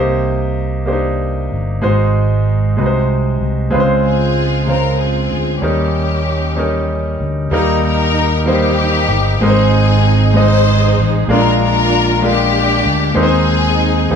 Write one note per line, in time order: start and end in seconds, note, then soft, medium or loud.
0.00 1.48 C2 medium
0.00 0.84 C3 medium
0.00 0.54 A#3 medium
0.00 0.55 D#4 medium
0.00 0.55 G4 medium
0.00 0.55 C5 medium
0.86 1.49 A#3 medium
0.86 0.94 D4 soft
0.86 1.50 G4 medium
0.86 1.50 C5 medium
0.93 1.52 D#4 medium
1.52 1.81 G1 medium
1.82 2.75 G#1 medium
1.82 2.74 G#2 medium
1.82 2.44 G#3 medium
1.82 2.45 D#4 medium
1.82 2.45 F#4 medium
1.82 2.45 C5 medium
2.77 3.38 C2 medium
2.77 3.69 C3 medium
2.77 3.39 G#3 medium
2.77 3.40 D#4 medium
2.77 3.40 F#4 medium
2.77 2.85 B4 medium
2.86 3.44 C5 medium
3.41 3.70 C2 medium
3.70 5.27 C#2 medium
3.70 4.63 C#3 medium
3.70 4.34 G#3 medium
3.70 4.34 C4 medium
3.70 4.35 F4 medium
3.70 3.80 B4 medium
3.80 4.38 C5 medium
4.05 4.96 C4 medium
4.05 4.96 F4 medium
4.05 4.64 G#4 medium
4.66 5.30 C#3 soft
4.66 5.29 G#3 soft
4.66 5.30 F4 soft
4.66 5.00 A#4 medium
4.66 5.31 C5 medium
4.98 5.59 C4 medium
4.98 5.59 F4 medium
4.98 5.62 G#4 medium
5.31 5.60 D2 medium
5.60 7.16 D#2 medium
5.60 6.53 D#3 soft
5.60 6.24 G3 medium
5.60 7.16 A#3 medium
5.60 6.24 C#4 medium
5.60 7.16 C#4 medium
5.60 6.25 D#4 medium
5.60 7.19 G4 medium
5.64 6.25 A#4 medium
6.56 7.18 G3 medium
6.56 7.19 C#4 medium
6.56 7.19 D#4 medium
6.56 7.20 A#4 medium
7.20 7.49 D2 medium
7.51 9.05 D#2 medium
7.51 8.42 D#3 medium
7.51 8.13 G3 medium
7.51 8.14 A#3 medium
7.51 8.14 D#4 medium
7.51 7.83 D#4 medium
7.51 7.83 G4 medium
7.51 7.82 A#4 medium
7.51 8.14 A#4 medium
7.83 8.45 D#4 medium
7.83 8.46 G4 medium
7.83 8.42 A#4 loud
8.46 9.07 G3 medium
8.46 9.08 A#3 medium
8.46 9.37 A#3 medium
8.46 9.36 D#4 medium
8.46 9.08 D#4 medium
8.46 9.41 G4 loud
8.46 9.09 C5 medium
9.08 9.38 G1 medium
9.40 10.93 G#1 loud
9.40 10.31 G#2 medium
9.40 10.02 G#3 medium
9.40 10.02 C4 medium
9.40 10.32 C4 medium
9.40 10.03 D#4 medium
9.40 10.32 D#4 medium
9.40 9.48 A#4 medium
9.45 10.36 G#4 loud
9.50 10.07 C5 medium
10.34 10.96 G#3 medium
10.34 10.96 C4 medium
10.34 10.97 D#4 medium
10.34 11.26 D#4 medium
10.34 11.26 G#4 medium
10.34 11.06 C5 loud
10.34 10.97 D#5 medium
10.98 11.27 A1 medium
11.28 12.81 A#1 loud
11.28 12.20 A#2 medium
11.28 11.90 G#3 medium
11.28 11.90 D4 medium
11.28 11.91 F4 medium
11.28 11.91 A#4 medium
11.33 11.61 D4 medium
11.33 11.61 F4 medium
11.33 11.60 A#4 loud
11.62 12.24 D4 medium
11.62 12.51 F4 medium
11.62 12.20 A#4 loud
12.22 12.84 G#3 medium
12.22 12.84 D4 medium
12.22 13.14 D4 medium
12.22 12.84 F4 medium
12.22 12.85 A#4 medium
12.26 13.19 G4 loud
12.86 13.14 D2 medium
13.15 14.07 D#2 loud
13.15 14.06 D#3 medium
13.15 13.77 G#3 medium
13.15 13.77 C4 medium
13.15 13.78 D#4 medium
13.15 13.23 A#4 medium
13.21 14.09 C4 medium
13.21 14.09 D#4 medium
13.21 14.10 G#4 loud
13.21 13.81 C5 medium
14.10 14.16 D#2 medium
14.10 14.16 D#3 medium
14.10 14.16 G3 medium
14.10 14.16 A#3 medium
14.10 14.16 D#4 medium
14.10 14.16 G#4 medium